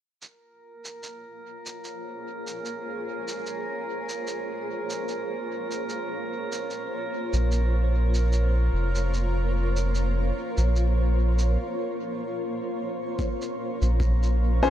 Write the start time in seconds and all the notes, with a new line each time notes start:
0.22 A#3 A#4, cabasa
0.29 F4
0.75 C#5
0.85 cabasa
1.03 cabasa
1.13 G#4
1.24 C5
1.66 cabasa
1.84 cabasa
2.47 cabasa
2.65 cabasa
3.28 cabasa
3.46 cabasa
4.09 cabasa
4.27 cabasa
4.90 cabasa
5.08 cabasa
5.71 cabasa
5.89 cabasa
6.52 cabasa
6.68 A#4, cabasa
7.33 A#1, cabasa
7.52 cabasa
8.14 cabasa
8.33 cabasa
8.73 F1
8.95 cabasa
9.14 cabasa
9.76 cabasa
9.95 cabasa
10.57 A#1, cabasa
10.76 cabasa
11.39 cabasa
13.19 A#4, kick, cabasa
13.42 cabasa
13.82 A#1, cabasa
14.00 kick, cabasa
14.22 G#4, cabasa
14.63 C#4 G#4 C5, cabasa